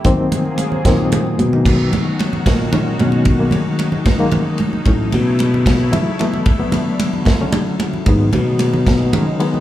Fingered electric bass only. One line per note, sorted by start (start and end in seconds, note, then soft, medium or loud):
0.85 1.35 A#2 medium
1.39 1.89 B2 loud
2.47 2.96 A#2 medium
3.01 3.50 B2 medium
4.88 5.13 A2 medium
5.14 5.90 B2 loud
8.08 8.33 G#2 medium
8.34 9.10 B2 loud